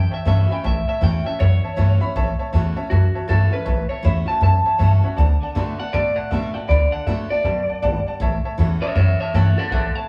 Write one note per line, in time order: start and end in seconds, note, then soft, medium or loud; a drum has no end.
0.00 0.61 E2 medium
0.00 0.12 G5 medium
0.11 0.20 C#5 medium
0.11 0.20 E5 medium
0.11 0.27 E5 medium
0.11 0.20 A5 medium
0.11 muted upright bass stroke medium
0.25 0.46 G2 loud
0.25 0.48 E3 loud
0.25 0.49 A3 loud
0.25 0.49 C#4 medium
0.25 0.47 F#4 medium
0.25 0.40 C#5 loud
0.25 0.40 E5 medium
0.25 0.52 E5 loud
0.25 0.41 A5 loud
0.48 0.64 C#4 soft
0.48 0.63 F#4 medium
0.48 0.58 C#5 medium
0.48 0.59 E5 medium
0.48 0.65 G5 medium
0.48 0.59 B5 medium
0.48 muted upright bass stroke medium
0.64 0.84 A1 medium
0.64 1.37 A2 loud
0.64 0.78 C#5 medium
0.64 0.78 E5 medium
0.64 0.88 E5 medium
0.64 0.78 A5 loud
0.88 0.96 C#5 medium
0.88 0.96 E5 medium
0.88 1.02 E5 medium
0.88 0.97 A5 medium
0.88 muted upright bass stroke medium
1.01 1.21 E2 medium
1.01 1.24 E3 medium
1.01 1.25 A3 medium
1.01 1.25 C#4 medium
1.01 1.24 F#4 medium
1.01 1.16 C#5 medium
1.01 1.16 E5 medium
1.01 1.26 G5 medium
1.01 1.16 A5 medium
1.25 1.40 C#4 medium
1.25 1.39 F#4 medium
1.25 1.34 C#5 medium
1.25 1.34 E5 medium
1.25 1.40 E5 medium
1.25 1.34 A5 medium
1.25 muted upright bass stroke medium
1.40 2.13 E2 loud
1.40 1.60 F#2 loud
1.40 1.54 C#5 medium
1.40 2.50 C#5 loud
1.40 1.54 E5 medium
1.40 1.54 F#5 loud
1.63 1.72 C#5 medium
1.63 1.72 E5 medium
1.63 1.72 A5 medium
1.63 muted upright bass stroke medium
1.76 1.98 G2 medium
1.76 2.00 E3 medium
1.76 2.00 A3 medium
1.76 2.00 C#4 loud
1.76 1.99 F#4 loud
1.76 1.91 C#5 loud
1.76 1.91 E5 loud
1.76 1.92 A5 loud
2.00 2.15 C#4 soft
2.00 2.14 F#4 medium
2.00 2.09 C#5 medium
2.00 2.09 E5 medium
2.00 2.10 B5 loud
2.00 muted upright bass stroke medium
2.15 2.35 A1 medium
2.15 2.88 A2 loud
2.15 2.30 C#5 loud
2.15 2.30 E5 loud
2.15 2.30 A5 loud
2.39 2.48 C#5 medium
2.39 2.48 E5 medium
2.39 2.48 A5 loud
2.39 muted upright bass stroke medium
2.52 2.73 E2 loud
2.52 2.76 E3 loud
2.52 2.76 A3 loud
2.52 2.77 C#4 medium
2.52 2.75 F#4 loud
2.52 2.67 C#5 medium
2.52 2.67 E5 medium
2.52 2.68 A5 loud
2.76 2.91 C#4 soft
2.76 2.90 F#4 medium
2.76 2.85 C#5 medium
2.76 2.85 E5 medium
2.76 2.85 A5 loud
2.76 muted upright bass stroke medium
2.90 3.64 E2 medium
2.90 3.11 F#2 loud
2.90 3.27 F#4 loud
2.90 3.05 C#5 medium
2.90 3.05 E5 medium
2.90 3.05 A5 loud
3.15 3.23 C#5 medium
3.15 3.23 E5 medium
3.15 3.24 A5 medium
3.15 muted upright bass stroke medium
3.28 3.49 G2 loud
3.28 3.51 E3 medium
3.28 3.51 A3 medium
3.28 3.52 C#4 medium
3.28 3.50 F#4 medium
3.28 3.52 A4 medium
3.28 3.43 C#5 medium
3.28 3.44 E5 medium
3.28 3.44 A5 loud
3.51 3.67 C#4 soft
3.51 3.65 F#4 medium
3.51 3.89 B4 medium
3.51 3.61 C#5 medium
3.51 3.61 E5 medium
3.51 3.61 A5 medium
3.51 muted upright bass stroke medium
3.65 3.86 A1 loud
3.65 4.39 A2 medium
3.65 3.80 C#5 medium
3.65 3.80 E5 medium
3.65 3.81 A5 loud
3.89 3.98 C#5 medium
3.89 4.05 C#5 medium
3.89 3.99 E5 medium
3.89 3.99 A5 medium
3.89 muted upright bass stroke medium
4.02 4.24 E2 medium
4.02 4.26 E3 medium
4.02 4.26 A3 medium
4.02 4.27 C#4 loud
4.02 4.25 F#4 loud
4.02 4.19 C#5 medium
4.02 4.28 E5 medium
4.02 4.19 E5 medium
4.02 4.19 B5 medium
4.26 4.42 C#4 soft
4.26 4.41 F#4 medium
4.26 4.37 C#5 medium
4.26 4.37 E5 medium
4.26 4.42 A5 medium
4.26 4.37 A5 medium
4.26 muted upright bass stroke medium
4.41 5.14 E2 medium
4.41 4.61 F#2 loud
4.41 4.56 C#5 medium
4.41 4.57 E5 medium
4.41 4.57 A5 loud
4.41 5.53 A5 loud
4.65 4.74 C#5 medium
4.65 4.74 E5 medium
4.65 4.74 A5 medium
4.65 muted upright bass stroke medium
4.78 5.00 G2 medium
4.78 5.02 E3 medium
4.78 5.02 A3 medium
4.78 5.03 C#4 medium
4.78 5.01 F#4 medium
4.78 4.94 C#5 loud
4.78 4.94 E5 medium
4.78 4.94 A5 loud
5.02 5.18 C#4 soft
5.02 5.17 F#4 medium
5.02 5.12 C#5 medium
5.02 5.13 E5 medium
5.02 5.13 F#5 loud
5.02 muted upright bass stroke medium
5.16 5.37 D2 loud
5.16 5.54 D3 loud
5.16 5.31 D5 loud
5.16 5.32 F#5 loud
5.16 5.32 A5 loud
5.42 5.50 D5 medium
5.42 5.51 F#5 medium
5.42 5.51 A5 loud
5.42 muted upright bass stroke medium
5.55 5.75 A2 loud
5.55 5.78 D3 medium
5.55 5.78 A3 medium
5.55 5.78 B3 loud
5.55 5.78 F#4 loud
5.55 5.70 D5 medium
5.55 5.70 F#5 medium
5.55 5.71 A5 loud
5.79 5.94 B3 medium
5.79 5.93 F#4 medium
5.79 5.88 D5 medium
5.79 5.88 F#5 medium
5.79 5.93 F#5 loud
5.79 5.88 A5 medium
5.79 muted upright bass stroke medium
5.93 6.67 A2 medium
5.93 6.13 B2 loud
5.93 6.07 D5 loud
5.93 6.16 D5 loud
5.93 6.08 F#5 medium
5.93 6.08 A5 loud
6.16 6.26 D5 medium
6.16 6.31 F#5 medium
6.16 6.26 F#5 medium
6.16 6.26 A5 medium
6.16 muted upright bass stroke medium
6.31 6.51 B2 medium
6.31 6.54 D3 medium
6.31 6.54 A3 medium
6.31 6.55 B3 loud
6.31 6.53 F#4 medium
6.31 6.45 D5 loud
6.31 6.54 E5 loud
6.31 6.45 F#5 medium
6.31 6.46 A5 loud
6.54 6.69 B3 soft
6.54 6.68 F#4 medium
6.54 6.63 D5 medium
6.54 6.68 F#5 loud
6.54 6.64 F#5 medium
6.54 6.64 A5 medium
6.54 muted upright bass stroke medium
6.68 6.89 D2 medium
6.68 7.06 D3 loud
6.68 6.83 D5 medium
6.68 6.92 D5 medium
6.68 6.83 F#5 medium
6.68 6.83 B5 loud
6.92 7.01 D5 medium
6.92 7.07 F#5 medium
6.92 7.02 F#5 medium
6.92 7.02 A5 medium
6.92 muted upright bass stroke medium
7.06 7.26 A2 loud
7.06 7.30 D3 medium
7.06 7.30 A3 medium
7.06 7.31 B3 medium
7.06 7.30 F#4 medium
7.06 7.21 D5 medium
7.06 7.30 E5 loud
7.06 7.22 F#5 medium
7.06 7.22 A5 medium
7.30 7.46 B3 soft
7.30 7.45 F#4 medium
7.30 8.18 D5 loud
7.30 7.39 D5 medium
7.30 7.39 F#5 medium
7.30 7.40 A5 medium
7.30 muted upright bass stroke medium
7.44 7.82 F#2 medium
7.44 7.64 B2 loud
7.44 7.59 D5 medium
7.44 7.59 F#5 medium
7.44 7.59 A5 loud
7.68 7.77 D5 medium
7.68 7.77 F#5 medium
7.68 7.78 A5 medium
7.68 muted upright bass stroke medium
7.82 8.02 G#1 loud
7.82 8.19 G2 loud
7.82 7.97 D5 loud
7.82 7.97 F#5 loud
7.82 7.97 A5 loud
8.06 8.15 D5 medium
8.06 8.15 F#5 medium
8.06 8.16 A5 loud
8.06 muted upright bass stroke medium
8.20 8.40 A1 loud
8.20 8.93 A2 loud
8.20 8.35 C#5 loud
8.20 8.35 E5 loud
8.20 8.36 A5 loud
8.44 8.53 C#5 medium
8.44 8.53 E5 medium
8.44 8.53 A5 loud
8.44 muted upright bass stroke medium
8.58 8.78 E2 loud
8.58 8.81 E3 medium
8.58 8.82 A3 medium
8.58 8.82 C#4 medium
8.58 8.81 F#4 loud
8.58 8.73 C#5 medium
8.58 8.73 E5 medium
8.58 8.73 A5 medium
8.82 8.97 C#4 medium
8.82 8.96 F#4 medium
8.82 8.94 C#5 medium
8.82 8.91 C#5 medium
8.82 8.94 E5 medium
8.82 8.91 E5 medium
8.82 8.91 A5 medium
8.82 muted upright bass stroke medium
8.95 9.69 E2 medium
8.95 9.15 F#2 loud
8.95 9.18 C#5 medium
8.95 9.11 C#5 medium
8.95 9.19 E5 medium
8.95 9.11 E5 medium
8.95 9.11 F#5 loud
9.20 9.33 C#5 medium
9.20 9.29 C#5 medium
9.20 9.35 E5 medium
9.20 9.29 E5 medium
9.20 9.29 A5 medium
9.20 muted upright bass stroke medium
9.34 9.54 G2 medium
9.34 9.57 E3 loud
9.34 9.57 A3 medium
9.34 9.58 C#4 loud
9.34 9.55 F#4 loud
9.34 9.57 A4 medium
9.34 9.49 C#5 loud
9.34 9.49 E5 medium
9.34 9.58 F#5 medium
9.34 9.49 A5 loud
9.57 9.72 C#4 soft
9.57 9.71 F#4 medium
9.57 9.70 A4 medium
9.57 9.67 C#5 medium
9.57 9.67 E5 medium
9.57 9.71 F#5 loud
9.57 9.67 A5 medium
9.57 muted upright bass stroke medium
9.71 9.91 A1 medium
9.71 10.09 A2 medium
9.71 9.94 A4 medium
9.71 9.87 C#5 medium
9.71 9.87 E5 medium
9.71 9.95 F#5 loud
9.71 9.87 A5 loud
9.95 10.05 C#5 medium
9.95 10.05 E5 medium
9.95 10.09 A5 loud
9.95 10.05 A5 medium
9.95 muted upright bass stroke medium